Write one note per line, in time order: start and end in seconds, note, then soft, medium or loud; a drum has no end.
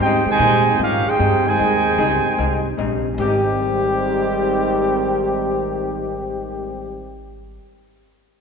0.00 0.24 G#2 medium
0.00 0.27 G#2 soft
0.00 0.28 G3 soft
0.00 0.25 C4 medium
0.00 0.28 C4 medium
0.00 0.25 D#4 medium
0.00 0.28 D#4 medium
0.00 0.26 D#4 medium
0.00 0.24 G4 medium
0.00 0.26 G#4 medium
0.00 0.26 C5 medium
0.00 0.26 G5 loud
0.26 0.76 C3 medium
0.26 0.76 D#3 medium
0.26 0.75 G#3 loud
0.26 muted upright bass stroke soft
0.30 0.78 D#4 loud
0.30 0.78 C5 medium
0.30 0.78 G5 medium
0.30 0.78 G#5 loud
0.39 0.67 G#2 medium
0.39 0.78 A#2 loud
0.39 0.67 G3 medium
0.39 0.67 C4 medium
0.39 0.68 D#4 medium
0.78 1.07 G#2 soft
0.78 1.04 G#2 medium
0.78 1.07 G3 medium
0.78 1.07 C4 medium
0.78 1.07 C#4 medium
0.78 1.08 D#4 medium
0.78 1.05 F4 medium
0.78 1.07 G4 medium
0.78 1.07 A#4 medium
0.78 1.07 F5 medium
1.05 1.45 C4 medium
1.05 1.46 D#4 medium
1.05 1.47 D#4 medium
1.05 1.46 G#4 medium
1.05 1.47 G#4 medium
1.05 1.47 C5 medium
1.05 1.47 G5 loud
1.05 muted upright bass stroke soft
1.19 1.58 G2 loud
1.19 1.47 G#2 medium
1.19 1.47 G3 medium
1.19 1.47 C4 medium
1.19 1.48 D#4 medium
1.45 2.65 C3 medium
1.45 2.65 D#3 medium
1.45 1.97 D#3 medium
1.45 2.65 G#3 medium
1.45 1.97 G#3 medium
1.45 1.97 C4 medium
1.45 2.67 D#4 medium
1.45 1.97 G#4 loud
1.45 2.67 C5 medium
1.45 2.67 G5 medium
1.45 2.67 G#5 medium
1.57 1.98 D#2 medium
1.57 1.86 G#2 medium
1.57 1.87 G3 soft
1.57 1.87 C4 medium
1.57 1.87 D#4 soft
1.98 2.23 C#2 loud
1.98 2.26 G#2 medium
1.98 2.60 D#3 medium
1.98 2.26 G3 medium
1.98 2.60 G#3 medium
1.98 2.27 C4 medium
1.98 2.60 C4 medium
1.98 2.27 D#4 medium
1.98 2.60 G#4 loud
2.38 2.78 C2 medium
2.38 2.66 G#2 medium
2.38 2.67 G3 medium
2.38 2.67 C4 medium
2.38 2.67 D#4 medium
2.77 3.17 A#1 loud
2.77 3.06 G#2 medium
2.77 3.07 G3 medium
2.77 3.07 C4 medium
2.77 3.07 D#4 medium
3.14 7.57 G#1 loud
3.14 7.58 G#2 medium
3.14 7.13 G#2 loud
3.14 7.13 D#3 loud
3.18 7.17 D#3 loud
3.18 7.14 G3 loud
3.18 7.63 G3 medium
3.18 7.17 C4 medium
3.18 7.14 C4 loud
3.18 7.18 G4 loud
3.24 7.68 C4 medium
3.24 7.71 D#4 medium